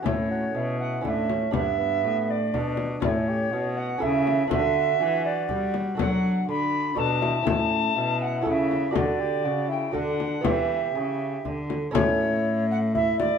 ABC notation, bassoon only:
X:1
M:3/4
L:1/8
Q:1/4=121
K:Amix
V:1 name="Bassoon"
E F E2 D C | B, B,3 D D | E G F2 E2 | F6- |
F3 z D E- | E2 E4 | F G F E D2 | G4- G z |
E4 E2 |]